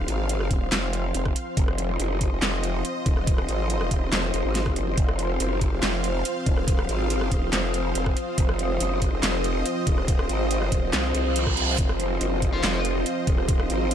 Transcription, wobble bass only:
0.08 0.49 G#1 medium
0.51 0.70 D#1 loud
0.72 1.13 F1 loud
1.15 1.34 F1 loud
1.57 1.98 F1 loud
2.00 2.30 F#1 loud
2.32 2.41 F1 loud
2.42 2.83 F1 loud
3.06 3.47 D#1 loud
3.49 3.90 G#1 loud
3.91 4.11 D#1 loud
4.12 4.32 F1 loud
4.34 4.43 F1 loud
4.45 4.75 G#1 loud
4.76 4.96 F#1 loud
4.98 5.38 F1 loud
5.40 5.71 F#1 loud
5.72 5.81 F1 loud
5.83 6.24 F1 loud
6.46 6.87 D#1 loud
6.89 7.30 G#1 medium
7.32 7.51 D#1 medium
7.53 7.94 F1 loud
7.95 8.15 F1 loud
8.38 8.79 F1 loud
8.81 9.11 F#1 loud
9.13 9.21 F1 loud
9.23 9.64 F1 loud
9.87 10.28 D#1 loud
10.29 10.70 G#1 medium
10.72 10.92 D#1 loud
10.93 11.13 C2 loud
11.15 11.77 C2 loud
11.78 12.19 F1 loud
12.21 12.51 F#1 loud
12.53 12.62 F1 loud
12.64 13.04 F1 loud
13.27 13.68 D#1 loud
13.70 13.94 G#1 loud

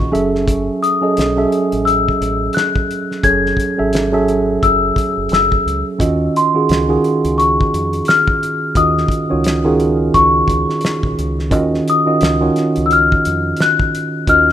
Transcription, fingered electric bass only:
0.01 0.11 A#1 medium
0.14 0.68 F#1 medium
1.18 1.45 B1 medium
1.73 2.10 A1 medium
2.21 2.48 A1 medium
3.25 3.51 F#1 medium
3.80 4.58 G#1 medium
4.63 4.90 F#1 medium
4.97 muted fingered electric bass stroke soft
5.17 5.28 F#1 medium
5.31 5.58 F#1 medium
5.66 5.82 C#2 medium
6.01 6.27 D#2 medium
6.70 6.96 C#2 medium
7.24 7.62 C#2 medium
7.74 8.00 F2 medium
8.77 9.03 D#2 medium
9.32 10.10 C#2 medium
10.15 10.42 C#2 medium
10.49 10.65 C#2 medium
11.04 11.14 A#1 medium
11.19 11.52 C#2 medium
11.52 11.79 D#2 medium
12.22 12.48 C#2 medium
12.77 13.15 C#2 medium
13.26 13.52 F2 medium
14.29 14.52 D#2 loud

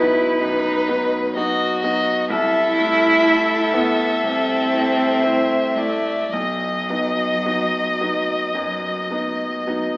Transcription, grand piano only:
0.00 2.32 B1 medium
0.00 0.89 F#3 medium
0.00 0.89 B3 medium
0.00 0.89 D#4 medium
0.42 0.87 F#2 medium
0.89 1.32 F#3 soft
0.89 1.32 B3 soft
0.89 1.32 D#4 medium
1.36 1.79 F#3 medium
1.36 1.79 B3 soft
1.36 1.80 D#4 medium
1.83 2.26 F#3 soft
1.83 2.27 B3 soft
1.83 2.27 D#4 medium
2.30 2.76 C2 medium
2.79 3.23 A3 soft
2.79 3.23 E4 medium
3.27 3.71 A3 soft
3.27 3.71 E4 medium
3.75 4.19 A3 soft
3.75 4.20 E4 medium
4.24 4.71 C2 medium
4.73 5.20 A3 soft
4.73 5.20 E4 soft
5.23 5.73 A3 soft
5.23 5.74 E4 medium
5.77 6.29 A3 soft
5.77 6.29 E4 soft
6.33 6.88 B1 medium
6.90 7.41 F#3 soft
6.90 7.41 B3 soft
6.90 7.41 D#4 soft
7.46 7.97 F#3 soft
7.46 7.97 B3 soft
7.46 7.97 D#4 medium
8.01 8.52 F#3 soft
8.01 8.52 B3 soft
8.01 8.52 D#4 soft
8.55 9.08 F#2 medium
9.11 9.61 F#3 soft
9.11 9.61 B3 soft
9.11 9.61 D#4 soft
9.67 9.97 F#3 soft
9.67 9.97 B3 soft
9.67 9.97 D#4 medium

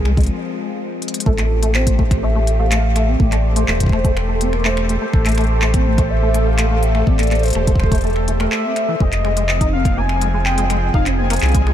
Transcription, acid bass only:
0.05 0.12 G#3 medium
0.17 0.22 G#3 medium
1.26 1.33 A3 loud
1.38 1.45 A3 medium
1.63 1.76 A3 medium
1.75 1.88 C4 medium
1.87 1.97 A3 medium
1.99 2.03 A3 medium
2.23 2.30 A3 medium
2.35 2.39 A3 medium
2.59 2.66 A3 loud
2.72 2.78 A3 medium
2.96 3.09 A3 medium
3.08 3.21 C4 medium
3.20 3.30 A3 medium
3.32 3.36 A3 medium
3.56 3.63 A3 medium
3.68 3.72 A3 medium
3.92 3.99 A3 loud
4.05 4.11 A3 medium
4.29 4.42 A3 medium
4.41 4.55 C4 medium
4.53 4.63 A3 medium
4.65 4.69 A3 medium
4.89 4.96 A3 medium
5.01 5.06 A3 medium
5.26 5.33 A3 loud
5.38 5.45 A3 medium
5.62 5.76 A3 medium
5.74 5.88 C4 medium
5.86 5.96 A3 medium
5.98 6.02 A3 medium
6.22 6.29 A3 medium
6.34 6.39 A3 medium
6.59 6.66 A3 loud
6.71 6.78 A3 medium
6.95 7.09 A3 medium
7.07 7.21 C4 medium
7.19 7.29 A3 medium
7.31 7.35 A3 medium
7.55 7.62 A3 medium
7.67 7.72 A3 medium
7.92 7.99 A3 loud
8.04 8.11 A3 medium
8.28 8.32 A3 medium
8.40 8.66 A3 medium
8.64 8.75 C4 medium
8.88 8.95 E3 medium
9.01 9.05 G#3 medium
9.25 9.32 G#3 loud
9.37 9.44 G#3 medium
9.61 9.75 D#4 medium
9.73 9.87 C4 medium
9.85 9.96 A#3 medium
9.97 10.01 A#3 medium
10.22 10.28 G#3 medium
10.33 10.38 G#3 medium
10.58 10.65 G#3 loud
10.70 10.77 G#3 medium
10.94 11.08 D#4 medium
11.06 11.20 C4 medium
11.18 11.29 A#3 medium
11.30 11.34 A#3 medium
11.55 11.61 G#3 medium
11.67 11.71 G#3 medium

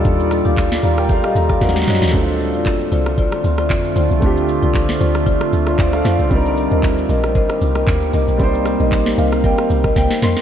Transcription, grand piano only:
0.00 1.63 F3 medium
0.00 1.60 G3 medium
0.00 1.57 D4 medium
0.00 1.58 D#4 medium
0.00 0.82 F4 medium
0.00 0.83 A4 medium
0.84 0.98 D5 medium
0.84 0.97 A#5 medium
0.98 1.09 A#4 medium
0.98 1.09 G5 medium
1.10 1.24 A4 medium
1.10 1.23 F5 medium
1.24 1.49 G4 medium
1.24 1.49 D#5 medium
1.36 1.60 A#5 medium
1.50 1.75 F4 medium
1.50 1.75 D5 medium
1.60 2.14 F3 medium
1.60 2.13 F#3 medium
1.60 2.14 C#4 medium
1.60 2.14 D#4 medium
1.60 2.15 A#4 medium
1.60 2.10 F#5 medium
2.11 4.17 A3 medium
2.11 4.18 C4 medium
2.11 4.19 D4 medium
2.16 2.22 D#4 medium
2.16 4.20 A4 medium
2.22 4.22 F4 medium
4.20 6.26 A3 medium
4.20 6.27 C4 medium
4.20 6.27 D4 medium
4.24 5.51 F4 medium
4.24 5.52 G4 medium
5.67 5.78 C5 medium
5.79 5.93 F4 medium
5.79 5.93 D5 medium
5.94 6.05 A4 medium
5.94 6.05 F5 medium
6.05 6.19 F4 medium
6.05 6.19 D5 medium
6.20 6.44 C5 medium
6.29 8.35 G3 medium
6.29 8.35 C4 medium
6.29 8.36 D5 medium
6.33 8.37 D#4 medium
6.33 8.38 A#4 medium
8.37 10.42 G3 medium
8.37 10.42 C4 medium
8.37 10.42 D5 medium
8.42 10.42 D#4 medium
8.42 10.42 C5 medium
9.19 9.43 F5 medium
9.45 9.93 G5 medium
9.97 10.21 G5 medium
10.23 10.42 C6 medium

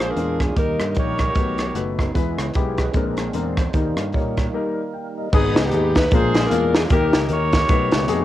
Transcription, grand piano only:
0.00 0.37 A#2 medium
0.17 0.43 G#3 medium
0.17 0.43 D4 medium
0.17 0.43 F4 medium
0.17 0.44 C5 medium
0.56 1.16 D#3 soft
0.56 0.83 G3 medium
0.56 0.83 A#3 medium
0.56 0.83 D#4 medium
0.56 0.83 A#4 medium
0.96 1.22 G3 medium
0.96 1.23 A#3 medium
0.96 1.23 D#4 medium
0.96 1.23 C#5 medium
1.35 1.95 B2 medium
1.35 1.62 A3 medium
1.35 1.62 D#4 medium
1.35 1.62 F#4 medium
1.35 1.62 B4 medium
1.75 2.02 A3 medium
1.75 2.02 D#4 medium
1.75 2.02 F#4 medium
1.75 2.02 B4 medium
2.15 2.75 E3 medium
2.15 2.42 G#3 medium
2.15 2.42 B3 medium
2.15 2.42 E4 medium
2.15 2.42 B4 medium
2.55 2.82 G#3 medium
2.55 2.82 B3 medium
2.55 2.82 E4 medium
2.55 2.82 G4 medium
2.95 3.54 A#2 medium
2.95 3.21 G#3 medium
2.95 3.21 C4 medium
2.95 3.22 D4 medium
2.95 3.22 A#4 medium
3.34 3.61 G#3 medium
3.34 3.61 C4 medium
3.34 3.61 D4 medium
3.34 3.61 A#4 medium
3.74 4.33 D#3 medium
3.74 4.01 G3 medium
3.74 4.01 A#3 medium
3.74 4.01 D#4 medium
3.74 4.01 A#4 medium
4.13 4.40 G3 medium
4.13 4.40 A#3 medium
4.13 4.40 D#4 medium
4.13 4.41 C#5 medium
4.54 4.80 G3 medium
4.54 4.80 A#3 medium
4.54 4.80 D#4 medium
4.54 4.81 A#4 medium
4.94 5.16 G5 medium
5.18 5.55 D#5 soft
5.34 5.92 G#2 medium
5.34 5.60 B3 medium
5.34 5.60 D#4 medium
5.34 5.60 G#4 loud
5.73 5.99 B3 medium
5.73 5.99 D#4 medium
5.73 6.00 G#4 medium
6.13 6.71 A#2 medium
6.13 6.39 G#3 medium
6.13 6.39 A#3 medium
6.13 6.39 D4 medium
6.13 6.39 F4 medium
6.13 6.39 A#4 medium
6.51 6.77 G#3 medium
6.51 6.77 A#3 medium
6.51 6.78 D4 medium
6.51 6.78 F4 medium
6.51 6.78 A#4 medium
6.91 7.50 D#3 medium
6.91 7.17 A#3 medium
6.91 7.17 D#4 medium
6.91 7.18 G4 loud
7.29 7.56 A#3 medium
7.29 7.56 D#4 medium
7.29 7.56 A#4 medium
7.69 8.25 B2 medium
7.69 7.95 A3 medium
7.69 7.96 B3 medium
7.69 7.96 D#4 medium
7.69 7.96 F#4 medium
7.69 7.96 B4 loud
8.08 8.25 A3 medium
8.08 8.25 B3 medium
8.08 8.25 D#4 medium
8.08 8.25 F#4 medium
8.08 8.25 G#4 loud

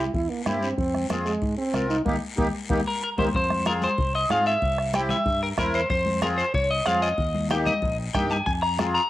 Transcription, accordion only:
0.46 0.68 C4 medium
0.46 0.69 E4 medium
0.46 0.69 G4 medium
1.10 1.32 C4 medium
1.10 1.32 F4 medium
1.10 1.33 G#4 medium
1.73 1.96 C4 medium
1.73 1.96 F4 medium
1.73 1.97 A#4 medium
2.06 2.16 A#3 medium
2.06 2.16 D#4 medium
2.06 2.16 G4 medium
2.37 2.48 A#3 medium
2.37 2.48 D#4 medium
2.37 2.48 G4 medium
2.71 2.81 A#3 medium
2.71 2.81 D#4 medium
2.71 2.81 G4 medium
3.18 3.28 A#3 medium
3.18 3.29 D#4 medium
3.18 3.28 G4 medium
3.66 3.89 C4 medium
3.66 3.89 F4 medium
3.66 3.89 G#4 medium
4.30 4.52 C4 medium
4.30 4.53 F4 medium
4.30 4.53 G#4 medium
4.94 5.16 C4 medium
4.94 5.17 E4 medium
4.94 5.17 G4 medium
5.57 5.80 C4 medium
5.57 5.80 E4 medium
5.57 5.81 A#4 medium
6.22 6.44 C4 medium
6.22 6.45 F4 medium
6.22 6.45 G#4 medium
6.86 7.08 C4 medium
6.86 7.09 F4 medium
6.86 7.09 G#4 medium
7.50 7.73 A#3 medium
7.50 7.73 D#4 medium
7.50 7.73 G4 medium
8.14 8.37 A#3 medium
8.14 8.37 D#4 medium
8.14 8.37 G4 medium
8.78 9.01 C4 medium
8.78 9.01 F4 medium
8.78 9.01 G#4 medium

